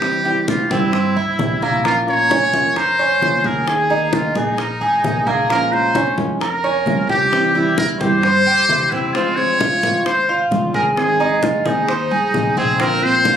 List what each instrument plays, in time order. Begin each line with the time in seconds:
Already playing: upright bass C2, muted trumpet G4
0.01 nylon-string guitar C3 E3 G3 C4 E4, high bongo, high conga
0.24 nylon-string guitar E3 G3 C4 E4, cuban tres G4, high bongo, high conga
0.47 nylon-string guitar E3 G3 C4 E4, muted trumpet F4, high bongo, high conga
0.70 upright bass G2, nylon-string guitar E3 G3 C4 E4, cuban tres C4, muted trumpet E4, high conga
0.93 muted nylon-string guitar stroke, high bongo, high conga
1.16 upright bass C2, cuban tres E4, high bongo, high conga
1.39 upright bass A#1, nylon-string guitar E3 G3 C4 E4, high bongo, low bongo, high conga
1.62 cuban tres A#3, muted trumpet E4, high bongo, high conga
1.84 nylon-string guitar F3 A#3 C#4 F4, cuban tres A#3, muted trumpet F4, high bongo, high conga
2.07 nylon-string guitar A#3 C#4 F4, muted trumpet C#5, high bongo, high conga
2.31 nylon-string guitar F3 A#3 C#4 F4, cuban tres C#4, high bongo, high conga
2.53 upright bass F2, nylon-string guitar A#3 C#4 F4, high conga
2.76 cuban tres A#4, muted trumpet C5, muted nylon-string guitar stroke, high bongo, high conga
2.99 cuban tres C#4, high bongo, high conga
3.21 upright bass D#2, nylon-string guitar F3 A#3 C#4 F4, high bongo, low bongo, high conga
3.44 cuban tres G#4, muted trumpet A#4, high bongo, high conga
3.67 nylon-string guitar D#3 A#3 D#4 G#4, muted trumpet G#4, high bongo, high conga
3.90 nylon-string guitar A#3 D#4 G#4, cuban tres D#4, high bongo, high conga
4.12 nylon-string guitar D#3 A#3 D#4 G#4, muted trumpet F4, high bongo, high conga
4.35 upright bass A#1, nylon-string guitar A#3 D#4 G#4, muted trumpet D#4, cuban tres G#4, high conga
4.58 cuban tres A#4, muted nylon-string guitar stroke, high bongo, high conga
4.81 upright bass G#1, cuban tres G#4, high bongo, high conga
5.03 upright bass A#1, nylon-string guitar D#3 A#3 D#4 G#4, high bongo, low bongo, high conga
5.27 cuban tres A#3, muted trumpet G#4, high bongo, high conga
5.49 nylon-string guitar F3 G#3 C#4 F4, cuban tres A#3, muted trumpet A#4, high bongo, high conga
5.72 nylon-string guitar G#3 C#4 F4, muted trumpet C5, high bongo, high conga
5.94 nylon-string guitar F3 G#3 C#4 F4, cuban tres C#4, high bongo, high conga
6.18 upright bass F2, nylon-string guitar G#3 C#4 F4, high conga
6.41 muted trumpet A#4, cuban tres A#4, muted nylon-string guitar stroke, high bongo, high conga
6.63 cuban tres C#4, high bongo, high conga
6.86 upright bass C2, nylon-string guitar F3 G#3 C#4 F4, high bongo, low bongo, high conga
7.09 cuban tres G4, muted trumpet G4, high bongo, high conga
7.31 nylon-string guitar C3 E3 G3 C4 E4, high bongo, high conga
7.55 nylon-string guitar E3 G3 C4 E4, cuban tres E4, high bongo, high conga
7.77 nylon-string guitar E3 G3 C4 E4, muted trumpet A#4, high bongo, high conga
8.00 upright bass G2, nylon-string guitar E3 G3 C4 E4, cuban tres G4, muted trumpet C5, high conga
8.23 cuban tres C5, muted nylon-string guitar stroke, high bongo, high conga
8.46 upright bass E2, cuban tres G4, high bongo, high conga
8.68 upright bass C#2, nylon-string guitar E3 G3 C4 E4, high bongo, low bongo, high conga
8.91 cuban tres C4, muted trumpet E4, high bongo, high conga
9.14 nylon-string guitar C#3 F3 G#3 C4 F4, cuban tres C4, muted trumpet F4, high bongo
9.36 nylon-string guitar F3 G#3 C4 F4, muted trumpet C#5, high bongo, high conga
9.60 nylon-string guitar F3 G#3 C4 F4, cuban tres F4, high bongo, high conga
9.83 upright bass G#1, nylon-string guitar F3 G#3 C4 F4, high conga
10.05 muted trumpet C5, cuban tres C5, muted nylon-string guitar stroke, high bongo, high conga
10.29 cuban tres F4, high bongo, high conga
10.51 upright bass G#1, nylon-string guitar F3 G#3 C4 F4, high bongo, low bongo, high conga
10.74 cuban tres G#4, muted trumpet A#4, high bongo, high conga
10.97 nylon-string guitar D#3 G#3 C4 D#4 G#4, muted trumpet G#4, high bongo, high conga
11.20 nylon-string guitar G#3 C4 D#4 G#4, cuban tres D#4, high bongo, high conga
11.43 nylon-string guitar G#3 C4 D#4 G#4, muted trumpet F4, high bongo, high conga
11.65 upright bass D#2, nylon-string guitar G#3 C4 D#4 G#4, muted trumpet D#4, cuban tres G#4, high conga
11.88 cuban tres C5, muted nylon-string guitar stroke, high bongo, high conga
12.11 upright bass C2, cuban tres G#4, high bongo, high conga
12.34 upright bass A#1, nylon-string guitar G#3 C4 D#4 G#4, high bongo, low bongo, high conga
12.57 cuban tres C4, muted trumpet G#4, high bongo, high conga
12.79 nylon-string guitar D3 A#3 C4 F4, cuban tres C4, muted trumpet A#4, high bongo, high conga
13.02 nylon-string guitar A#3 C4 F4, muted trumpet C5, high bongo, high conga
13.25 nylon-string guitar D3 A#3 C4 F4, cuban tres F4, high bongo, high conga